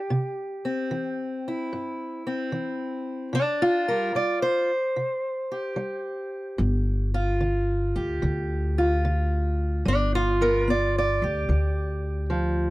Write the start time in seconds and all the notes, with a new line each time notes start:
Already playing: G4
0.10 C3
0.65 C4
0.91 E3
1.48 E4
1.73 G2
2.27 C4
2.52 E3
3.33 C3 D4
3.62 F4
3.88 G3 A#4
4.15 G3 D5
4.42 C5
4.96 C3
5.52 G4
5.76 G3
6.58 G1 G2
7.14 F4
7.40 D3
7.96 D2 G4
8.22 D2 D3
8.78 F4
9.05 D3
9.85 G1 G3 D4
10.15 F4
10.41 B3 A#4
10.68 B3 D5
10.98 D5
11.22 D2 G4
11.49 D2 D3
12.30 F3